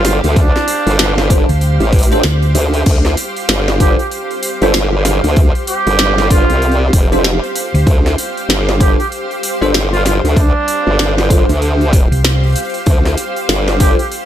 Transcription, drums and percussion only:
0.05 snare, open hi-hat
0.24 open hi-hat
0.36 kick, open hi-hat
0.56 snare, open hi-hat
0.68 open hi-hat
0.87 open hi-hat
0.99 snare, open hi-hat
1.18 snare, open hi-hat
1.30 kick, open hi-hat
1.49 open hi-hat
1.61 open hi-hat
1.80 open hi-hat
1.92 kick, open hi-hat
1.99 open hi-hat
2.03 open hi-hat
2.12 open hi-hat
2.23 snare, open hi-hat
2.42 open hi-hat
2.55 open hi-hat
2.74 open hi-hat
2.86 kick, open hi-hat, crash
3.05 snare, open hi-hat
3.17 open hi-hat
3.37 open hi-hat
3.49 snare, open hi-hat
3.68 snare, open hi-hat
3.80 kick, open hi-hat
3.99 open hi-hat
4.12 open hi-hat
4.31 open hi-hat
4.43 open hi-hat
4.62 open hi-hat
4.74 snare, open hi-hat
5.05 snare, open hi-hat
5.24 open hi-hat
5.36 kick, open hi-hat
5.55 open hi-hat
5.67 open hi-hat
5.87 open hi-hat
5.99 snare, open hi-hat
6.18 snare, open hi-hat
6.31 kick, open hi-hat
6.50 open hi-hat
6.62 open hi-hat
6.72 open hi-hat
6.93 kick, open hi-hat
7.12 open hi-hat
7.24 snare, open hi-hat
7.44 open hi-hat
7.56 open hi-hat
7.75 open hi-hat
7.87 kick, open hi-hat
8.06 snare, open hi-hat
8.18 open hi-hat
8.37 open hi-hat
8.50 snare, open hi-hat
8.69 snare, open hi-hat
8.80 kick, open hi-hat
9.00 open hi-hat
9.12 open hi-hat
9.31 open hi-hat
9.43 open hi-hat
9.62 open hi-hat
9.74 snare, open hi-hat
9.94 open hi-hat
10.06 snare, open hi-hat
10.25 open hi-hat
10.36 kick, open hi-hat
10.68 open hi-hat
10.99 snare, open hi-hat
11.18 snare, open hi-hat
11.30 kick, open hi-hat
11.49 open hi-hat
11.62 open hi-hat
11.81 open hi-hat
11.93 kick, open hi-hat
12.12 open hi-hat
12.25 snare, open hi-hat
12.43 open hi-hat
12.47 open hi-hat
12.50 open hi-hat
12.52 open hi-hat
12.56 open hi-hat
12.60 open hi-hat
12.65 open hi-hat
12.70 open hi-hat
12.74 open hi-hat
12.86 kick, open hi-hat
13.05 snare, open hi-hat
13.18 open hi-hat
13.36 open hi-hat
13.49 snare, open hi-hat
13.68 snare, open hi-hat
13.80 kick, open hi-hat
13.99 open hi-hat
14.12 open hi-hat

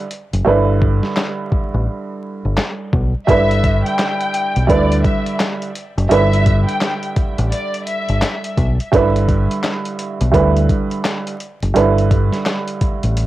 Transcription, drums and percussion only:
0.11 closed hi-hat
0.33 closed hi-hat
0.82 kick
1.03 snare
1.17 snare, clap
1.52 kick
2.57 snare, clap
2.93 kick
3.28 kick, closed hi-hat
3.51 closed hi-hat
3.64 kick, closed hi-hat
3.86 closed hi-hat
3.99 snare, clap, closed hi-hat
4.21 closed hi-hat
4.34 closed hi-hat
4.56 closed hi-hat
4.69 kick, closed hi-hat
4.92 closed hi-hat
5.05 kick, closed hi-hat
5.26 closed hi-hat
5.40 snare, clap, closed hi-hat
5.62 closed hi-hat
5.75 closed hi-hat
5.98 closed hi-hat
6.11 closed hi-hat
6.33 closed hi-hat
6.46 kick, closed hi-hat
6.69 closed hi-hat
6.81 snare, clap, closed hi-hat
7.03 closed hi-hat
7.16 kick, closed hi-hat
7.38 closed hi-hat
7.52 closed hi-hat
7.74 closed hi-hat
7.87 closed hi-hat
8.09 closed hi-hat
8.22 snare, clap, closed hi-hat
8.44 closed hi-hat
8.58 kick, closed hi-hat
8.80 closed hi-hat
8.93 kick, closed hi-hat
9.16 closed hi-hat
9.29 kick, closed hi-hat
9.51 closed hi-hat
9.64 snare, clap, closed hi-hat
9.85 closed hi-hat
9.99 closed hi-hat
10.21 closed hi-hat
10.34 kick, closed hi-hat
10.57 closed hi-hat
10.69 kick, closed hi-hat
10.91 closed hi-hat
11.04 snare, clap, closed hi-hat
11.27 closed hi-hat
11.40 closed hi-hat
11.63 closed hi-hat
11.76 closed hi-hat
11.98 closed hi-hat
12.11 kick, closed hi-hat
12.33 snare, closed hi-hat
12.46 snare, clap, closed hi-hat
12.68 closed hi-hat
12.81 kick, closed hi-hat
13.03 closed hi-hat
13.17 closed hi-hat

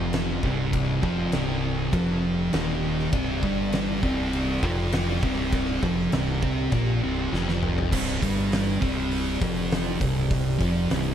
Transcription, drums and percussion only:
0.13 snare, crash
0.43 kick
0.73 kick, crash
1.03 kick
1.32 snare, crash
1.93 kick, crash
2.53 snare, crash
2.99 snare
3.12 kick, crash
3.43 kick
3.73 snare, crash
4.03 kick
4.33 crash
4.63 kick
4.92 snare, crash
5.23 kick
5.52 kick, crash
5.83 kick
6.12 snare, crash
6.43 kick
6.72 kick, crash
7.34 snare
7.49 snare
7.63 mid tom
7.78 floor tom
7.92 kick, crash
8.22 kick, open hi-hat
8.52 snare, open hi-hat
8.82 kick, open hi-hat
9.12 open hi-hat
9.42 kick, open hi-hat
9.71 snare, open hi-hat
10.01 kick, open hi-hat
10.31 kick, open hi-hat
10.60 kick, open hi-hat
10.90 snare, open hi-hat

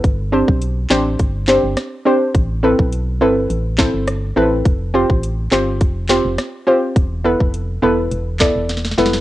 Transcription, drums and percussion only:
0.04 kick, closed hi-hat
0.48 kick
0.62 closed hi-hat
0.90 snare, clap
1.19 kick, closed hi-hat
1.48 snare, clap
1.77 cross-stick, snare, closed hi-hat
2.35 kick, closed hi-hat
2.79 kick
2.92 closed hi-hat
3.50 closed hi-hat
3.78 kick, snare, clap
4.08 cross-stick, closed hi-hat
4.65 kick, closed hi-hat
5.10 kick
5.23 closed hi-hat
5.52 snare, clap
5.81 kick, closed hi-hat
6.09 snare, clap
6.38 cross-stick, snare, closed hi-hat
6.96 kick, closed hi-hat
7.40 kick
7.54 closed hi-hat
8.12 closed hi-hat
8.40 kick, snare, clap
8.69 snare, closed hi-hat
8.77 snare
8.85 snare
8.91 snare
8.98 snare
9.06 snare
9.13 snare

